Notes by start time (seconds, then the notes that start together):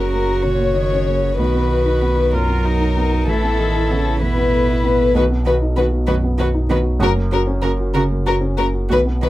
Already playing: F#1 F#2 C#3 A#3 C#4 F#4 A#4
0.13 A#3 A#4
0.28 F#4
0.43 A#2 C#3 C#5
0.60 A#3
0.74 D#3 F#4
0.92 C#4
1.08 C#3 A#3
1.23 F#4
1.38 B1 D#3 F#4 B4
1.55 B3
1.71 F#4
1.85 D#4
2.02 B3
2.17 F#4
2.33 F#2 F#3 F4 A#4
2.50 B3
2.65 D#4 F#4
2.80 D#4
2.96 B3 D#4
3.12 F#4
3.26 A1 E3 E4 A4
3.43 B3
3.58 D#3 A4
3.75 E4
3.90 C#3 B3
4.06 A4
4.21 E2 B2 E4 B4
4.37 B3
4.53 A4
4.68 E4
4.84 B3
4.99 A4
5.14 B1 D#3 F#4 B4
5.30 B3
5.45 D#3 F#4 B4
5.62 D#4
5.76 D#3 B3 F#4 B4
5.92 F#4
6.07 F#2 D#3 F#4 B4
6.23 B3
6.38 D#3 F#4 B4
6.54 D#4
6.69 D#3 B3 F#4 B4
6.83 F#4
7.00 F#1 F#2 C#3 F#4 A#4
7.15 A#3
7.32 C#3 F#4 A#4
7.47 C#4
7.62 C#3 A#3 F#4 A#4
7.80 F#4
7.94 C#3 F#4 A#4
8.10 A#3
8.26 C#3 F#4 A#4
8.41 C#4
8.57 C#3 A#3 F#4 A#4
8.73 F#4
8.89 B1 D#3 F#4 B4
9.06 B3
9.22 D#3 F#4 B4